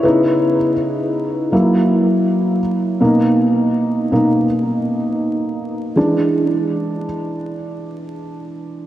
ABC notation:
X:1
M:4/4
L:1/8
Q:"Swing 16ths" 1/4=81
K:Bdor
V:1 name="Felt piano"
[^DB]2 z6 | z8 | z8 |]
V:2 name="Felt piano"
[C,B,E] z3 [F,^A,E]3 z | [B,,^A,^D]3 [B,,A,D] z4 | [E,G,D]3 z4 z |]